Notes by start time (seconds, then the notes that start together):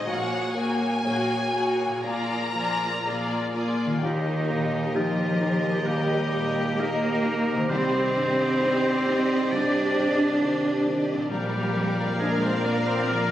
Already playing: G#2 A#2 D#3 D#4 F#4 G#4 C5
0.00 G#4 C#5
0.08 A#1 A#2 A#3 F#4 G#4 C#5 F#5
0.55 A#3 F#4 G#4 C#5 G#5
1.04 A#1 A#2 A#3 F#4 G#4 C#5
1.53 A#3 F#4 G#4 C#5
1.86 A#2
1.91 F4
1.95 G#4
2.00 A#1 D5
2.04 A#2 A#3 F4 G#4 A#5
2.54 F3 A#3 F4 G#4 D5
3.04 A#1 A#2 A#3 F4 G#4 D5
3.53 A#3 F4 G#4 D5
3.85 D#3
3.90 A#3
3.94 G4
3.99 D#4 G4 D#5 G5
4.03 D#2 D#3 G4 A#4 D#5
4.50 A#2
4.95 F3 D#4 F4 G4 D#5
5.41 D#4
5.87 D#2 G3 G4
6.33 A#2
6.79 A#3 D#4 G4 A#4 D#5
7.25 D#4
7.52 C3
7.56 D#3
7.61 G4
7.65 G4 D6
7.70 C2 C4 G4 C5 D5 D#5
8.16 G2
8.61 D#4 G4 C5
9.06 D#4
9.51 C2 D4 D5
9.97 G2
10.41 D#3 G4 C5
10.86 D#3
11.13 A#2
11.18 A#3
11.22 D4
11.27 G4 A#4
11.31 A#1 G3 F4 D5 F5
11.76 F2
12.20 G#3 A#3 D4 G#4 A#4
12.42 C4 C5
12.65 A#3 A#4
12.87 C4 C5
13.09 A#1 A#3 A#4